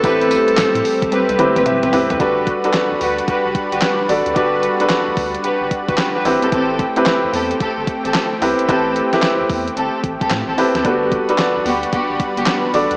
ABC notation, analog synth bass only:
X:1
M:4/4
L:1/16
Q:"Swing 16ths" 1/4=111
K:G
V:1 name="Analog synth bass" clef=bass
A,,,3 z A,, A,, z A,,, z C,, z A,,, A,,, A,,, z D,, | G,,,3 z2 D,, D,,2 F,,, F,,, z G,,, z2 A,,, D,, | G,,,3 z2 D,, D,,2 F,,, F,,, z G,,, z2 A,,, E,,, | A,,,3 z2 E,, E,,2 G,,, G,,, z A,,, z2 C,, E,,, |
A,,,3 z2 E,, E,,2 G,,, z A,,, C,, A,, A,,, z D,, | G,,,3 z2 D,, D,,2 F,,, F,,, z G,,, z2 A,,, D,, |]